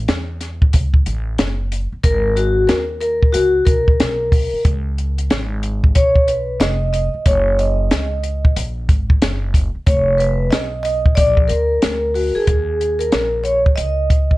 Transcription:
0.08 upright bass E2, snare, closed hi-hat
0.41 snare, closed hi-hat
0.62 kick
0.73 upright bass C#2, kick, closed hi-hat
0.94 kick
1.06 upright bass A1, closed hi-hat
1.38 upright bass F#1, snare, closed hi-hat
1.72 closed hi-hat
1.92 muted upright bass stroke
2.03 upright bass G#1, vibraphone A#4, kick, closed hi-hat
2.36 vibraphone F#4, closed hi-hat
2.67 vibraphone A#4, snare, closed hi-hat
3.01 vibraphone A#4, closed hi-hat
3.23 kick
3.33 upright bass C#2, vibraphone F#4, closed hi-hat
3.65 upright bass B1, vibraphone A#4, kick, closed hi-hat
3.88 kick
4.00 upright bass B1, snare, closed hi-hat
4.32 kick, open hi-hat
4.53 muted upright bass stroke
4.65 upright bass C#2, kick, closed hi-hat
4.98 closed hi-hat
5.18 closed hi-hat
5.30 upright bass G#1, snare, closed hi-hat
5.63 closed hi-hat
5.84 kick
5.95 upright bass B1, vibraphone C#5, kick, closed hi-hat
6.16 kick
6.28 vibraphone B4, closed hi-hat
6.60 upright bass F1, vibraphone D#5, snare, closed hi-hat
6.93 vibraphone D#5, closed hi-hat
7.14 muted upright bass stroke
7.26 upright bass F#1, vibraphone C#5, kick, closed hi-hat
7.59 vibraphone D#5, closed hi-hat
7.91 snare, closed hi-hat
8.23 closed hi-hat
8.45 kick
8.56 upright bass A#1, closed hi-hat
8.89 upright bass G#1, kick, closed hi-hat
9.10 kick
9.22 upright bass F#1, snare, closed hi-hat
9.54 kick, closed hi-hat
9.75 muted upright bass stroke
9.87 upright bass F1, vibraphone C#5, kick, closed hi-hat
10.18 vibraphone B4, closed hi-hat
10.51 vibraphone D#5, snare, closed hi-hat
10.83 vibraphone D#5, closed hi-hat
11.06 kick
11.15 upright bass A#1, vibraphone D5, kick, closed hi-hat
11.37 kick
11.48 upright bass D2, vibraphone A#4, closed hi-hat
11.82 upright bass D2, snare, closed hi-hat
12.14 vibraphone F#4, open hi-hat
12.35 vibraphone G#4, muted upright bass stroke
12.47 upright bass D#2, kick, closed hi-hat
12.81 closed hi-hat
12.99 vibraphone A#4, closed hi-hat
13.12 upright bass A#1, snare, closed hi-hat
13.44 vibraphone C#5, closed hi-hat
13.66 kick
13.76 upright bass C#2, vibraphone D#5, closed hi-hat
14.10 kick, closed hi-hat
14.31 kick

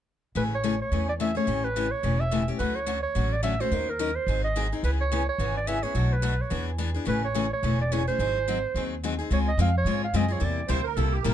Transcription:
0.35 upright bass A1, steel-string acoustic guitar C#3 E3 A3 C#4 G#4, clarinet B4
0.55 clarinet C#5
0.63 steel-string acoustic guitar C#3 E3 A3 C#4 G#4
0.82 clarinet C#5
0.91 upright bass E2, steel-string acoustic guitar C#3 E3 A3 C#4 G#4
1.09 clarinet D5
1.20 steel-string acoustic guitar C#3 E3 A3 C#4 G#4, clarinet E5
1.35 steel-string acoustic guitar A3 C#4 G#4, clarinet C#5
1.47 upright bass A1, steel-string acoustic guitar C#3 E3 A3 C#4 G4
1.64 clarinet B4
1.76 steel-string acoustic guitar C#3 E3 A3 C#4 G4
1.91 clarinet C#5
2.03 upright bass E1, steel-string acoustic guitar C#3 E3 A3 C#4 G4
2.20 clarinet E5
2.31 steel-string acoustic guitar C#3 E3 A3 C#4 G4
2.48 steel-string acoustic guitar A3 C#4 G4
2.59 upright bass D2, steel-string acoustic guitar D3 F#3 A3 C#4 F#4, clarinet B4
2.75 clarinet C#5
2.86 steel-string acoustic guitar D3 F#3 A3 C#4 F#4
3.03 clarinet C#5
3.15 upright bass A1, steel-string acoustic guitar D3 F#3 A3 C#4 F#4
3.32 clarinet D5
3.43 steel-string acoustic guitar D3 F#3 A3 C#4 F#4, clarinet E5
3.60 steel-string acoustic guitar A3 C#4 F#4, clarinet C5
3.71 upright bass D#2, steel-string acoustic guitar D#3 F#3 C#4 D#4 A#4
3.90 clarinet A#4
3.99 steel-string acoustic guitar D#3 F#3 C#4 D#4 A#4
4.16 clarinet C5
4.27 upright bass G#1, steel-string acoustic guitar D#3 F#3 C4 D#4 G#4
4.44 clarinet D#5
4.56 steel-string acoustic guitar D#3 F#3 C4 D#4 G#4
4.72 steel-string acoustic guitar C4 D#4 G#4
4.83 upright bass C#2, steel-string acoustic guitar C#3 E3 B3 C#4 G#4, clarinet B4
5.01 clarinet C#5
5.12 steel-string acoustic guitar C#3 E3 B3 C#4 G#4
5.29 clarinet C#5
5.38 upright bass G#1, steel-string acoustic guitar C#3 E3 B3 C#4 G#4
5.57 clarinet D5
5.67 steel-string acoustic guitar C#3 E3 B3 C#4 G#4, clarinet E5
5.83 steel-string acoustic guitar B3 C#4 G#4, clarinet C#5
5.94 upright bass B1, steel-string acoustic guitar B2 F#3 A3 D4 F#4
6.13 clarinet B4
6.22 steel-string acoustic guitar B2 F#3 A3 D4 F#4
6.41 clarinet C#5
6.50 upright bass E2, steel-string acoustic guitar E3 B3 D4 G#4
6.78 steel-string acoustic guitar E3 B3 D4 G#4
6.94 steel-string acoustic guitar B3 D4 G#4
7.05 upright bass A1, steel-string acoustic guitar C#3 E3 A3 C#4 G#4, clarinet B4
7.25 clarinet C#5
7.35 steel-string acoustic guitar C#3 E3 A3 C#4 G#4
7.53 clarinet C#5
7.63 upright bass E1, steel-string acoustic guitar C#3 E3 A3 C#4 G#4
7.82 clarinet D5
7.92 steel-string acoustic guitar C#3 E3 A3 C#4 G#4, clarinet C#5
8.07 steel-string acoustic guitar A3 C#4 G#4, clarinet C5
8.19 upright bass G#1, steel-string acoustic guitar D#3 F#3 C4 D#4 G#4
8.48 steel-string acoustic guitar D#3 F#3 C4 D#4 G#4
8.74 upright bass D#2, steel-string acoustic guitar D#3 F#3 C4 D#4 G#4
9.04 steel-string acoustic guitar D#3 F#3 C4 D#4 G#4
9.19 steel-string acoustic guitar C4 D#4 G#4
9.30 upright bass C#2, steel-string acoustic guitar C#3 G#3 C4 F4 G#4, clarinet C#5
9.48 clarinet D#5
9.57 upright bass F2, steel-string acoustic guitar C#3 G#3 C4 F4 G#4, clarinet F5
9.78 clarinet C#5
9.85 upright bass G#2, steel-string acoustic guitar C#3 G#3 C4 F4 G#4
10.04 clarinet F5
10.13 upright bass F#2, steel-string acoustic guitar C#3 G#3 C4 F4 G#4, clarinet D#5
10.28 steel-string acoustic guitar C4 F4 G#4, clarinet C#5
10.40 upright bass E2, steel-string acoustic guitar C3 G3 A#3 E4 G4
10.44 clarinet D5
10.68 upright bass D2, steel-string acoustic guitar C3 G3 A#3 E4 G4, accordion C5
10.84 accordion A#4
10.95 upright bass C2, steel-string acoustic guitar C3 G3 A#3 E4 G4, accordion A4
11.12 accordion G4
11.23 upright bass A1, steel-string acoustic guitar C3 G3 A#3 E4 G4, accordion A#4

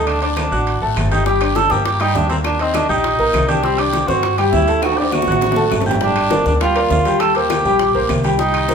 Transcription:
Already playing: upright bass D2, upright piano A3 A4 A5
0.06 cor anglais D4, high conga, high timbale, long guiro, claves
0.22 upright piano D4 D5 D6, cor anglais D4, high conga, high timbale
0.37 cor anglais D4, high conga, high timbale, low timbale, short guiro, claves
0.52 upright bass A1, upright piano F#4 F#5 F#6, high conga, short guiro
0.66 high conga, high timbale, long guiro
0.81 upright bass A1, upright piano A3 A4 A5, high conga
0.96 upright bass G1, high conga, high timbale, low timbale, short guiro, claves
1.11 cor anglais D#4, upright piano G4 G5 G6, high conga, high timbale, short guiro
1.26 upright piano G3 G4 G5, cor anglais G4, high bongo, high conga, long guiro
1.40 upright piano D4 D5 D6, cor anglais G4, high conga, high timbale, claves
1.55 cor anglais A4, high bongo, high conga, high timbale, low timbale, short guiro
1.70 upright bass G2, upright piano A#3 A#4 A#5, cor anglais G4, high conga, short guiro
1.85 cor anglais G4, high bongo, high conga, high timbale, long guiro
2.00 upright piano G3 G4 G5, cor anglais D#4, high bongo, high conga, high timbale, claves
2.15 upright bass D#2, cor anglais D4, high bongo, low bongo, high conga, low timbale, short guiro
2.30 upright piano A#3 A#4 A#5, cor anglais C4, high bongo, high conga, high timbale, short guiro
2.44 cor anglais D4, high bongo, high conga, high timbale, long guiro, claves
2.59 cor anglais C4, upright piano D#4 D#5 D#6, high conga, high timbale
2.74 cor anglais D4, high bongo, high conga, high timbale, low timbale, short guiro, claves
2.89 upright bass A#1, cor anglais D#4, upright piano G4 G5 G6, high conga, short guiro
3.04 high bongo, high conga, high timbale, long guiro
3.19 upright bass A#1, upright piano A#3 A#4 A#5, high bongo, high conga
3.34 upright bass C2, high bongo, low bongo, high conga, high timbale, low timbale, short guiro, claves
3.48 cor anglais D4, upright piano G4 G5 G6, high bongo, high conga, high timbale, short guiro
3.63 upright piano G3 G4 G5, cor anglais C4, high bongo, high conga, long guiro
3.78 upright piano D4 D5 D6, cor anglais G4, high conga, high timbale, claves
3.93 high bongo, high conga, high timbale, low timbale, short guiro
4.08 upright bass G2, upright piano C4 C5 C6, cor anglais F#4, high conga, short guiro
4.23 high bongo, high conga, high timbale, long guiro
4.38 upright piano G3 G4 G5, cor anglais G4, high bongo, high conga, high timbale, claves
4.52 upright bass D2, cor anglais E4, high bongo, low bongo, high conga, low timbale, short guiro
4.67 upright piano A3 A4 A5, high bongo, high timbale, short guiro
4.82 cor anglais F#4, high bongo, high conga, high timbale, long guiro, claves
4.92 high timbale
4.97 upright piano D4 D5 D6, cor anglais G4, high conga
5.02 high timbale
5.12 cor anglais F#4, high bongo, high conga, low timbale, short guiro, claves
5.22 high bongo
5.27 upright bass A1, upright piano F#4 F#5 F#6, high conga, short guiro
5.31 high bongo, low timbale
5.41 low bongo, low timbale, long guiro
5.47 high conga
5.51 low bongo, low timbale
5.56 upright piano A3 A4 A5, high conga
5.71 upright bass G1, low bongo, low timbale, short guiro, claves
5.81 low bongo, low timbale
5.86 upright piano G4 G5 G6, low conga, short guiro
5.91 low bongo, low timbale
5.96 low conga
6.01 upright piano G3 G4 G5, cor anglais D4, high bongo, high conga, long guiro
6.16 high conga, high timbale, claves
6.31 upright piano A#3 A#4 D5, high bongo, high conga, high timbale, low timbale, short guiro
6.46 upright bass D2, cor anglais D4, high conga, short guiro
6.60 upright piano G3 G4 G5, cor anglais F4, high bongo, high conga, high timbale, long guiro
6.75 upright piano A#3 A#4 D5, high bongo, high conga, high timbale, claves
6.90 upright bass D#2, cor anglais F4, high bongo, low bongo, high conga, low timbale, short guiro
7.05 upright piano G3 G4 G5, high bongo, high conga, high timbale, short guiro
7.20 cor anglais A4, high bongo, high conga, high timbale, long guiro, claves
7.35 upright piano A#3 A#4 C5, cor anglais G4, high conga, high timbale
7.50 high bongo, high conga, high timbale, low timbale, short guiro, claves
7.65 upright bass A#1, upright piano G3 G4 G5, high conga, short guiro
7.79 high bongo, high conga, high timbale, long guiro
7.94 upright bass A#1, upright piano A#3 A#4 C5, high bongo, high conga
8.09 upright bass C2, high bongo, low bongo, high conga, high timbale, low timbale, short guiro, claves
8.24 upright piano G3 G4 G5, high bongo, high conga, high timbale, short guiro
8.39 upright piano G3 G4 G5, cor anglais D#4, high bongo, high conga, long guiro
8.54 high conga, high timbale, claves
8.69 upright piano A#3 A#4 C5, high bongo, high conga, high timbale, low timbale, short guiro

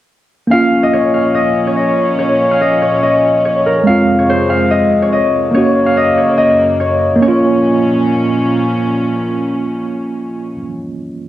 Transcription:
0.47 string section A#2 F3 C#4, tine electric piano A#3 C#4, harp F5
0.53 tine electric piano F4
0.83 harp D#5
0.93 harp C#5
1.14 harp F5
1.35 harp D#5
1.67 harp C#5
1.76 harp D#5
2.19 harp C#5
2.51 harp F5
2.61 harp D#5
2.82 harp C#5
3.02 harp D#5
3.45 harp C#5
3.66 harp A#4
3.83 string section F2 C3 G#3, tine electric piano G#3 C4, harp F5
3.89 tine electric piano F4
4.18 harp C#5
4.29 harp C5
4.50 harp F5
4.70 harp D#5
5.02 harp C#5
5.12 harp D#5
5.51 string section F#2 C#3 A#3, tine electric piano A#3 C#4, harp C#5
5.57 tine electric piano F#4
5.86 harp F5
5.97 harp D#5
6.18 harp C#5
6.38 harp D#5
6.80 harp C#5
7.16 tine electric piano A#3
7.22 string section A#2 F3 C#4, tine electric piano C#4, harp C#5
7.28 tine electric piano F4

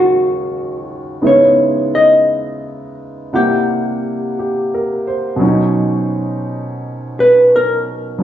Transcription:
Already playing: grand piano D#2 C#3 D#3 F#3 G#3 C#4 D#4 F#4 F5, hollow-body jazz guitar F#4
0.80 hollow-body jazz guitar F4
1.22 grand piano C#3 G#3 B3 D#4 E4
1.27 hollow-body jazz guitar C#5
1.95 hollow-body jazz guitar D#5
3.33 grand piano C3 G3 A#3 E4 F#5, hollow-body jazz guitar G4
4.39 grand piano G4
4.74 grand piano A#4
5.07 grand piano C5
5.36 grand piano B2 F#3
5.40 grand piano C#4 D#4
7.20 hollow-body jazz guitar B4
7.56 hollow-body jazz guitar A#4
8.18 grand piano F#3 B3

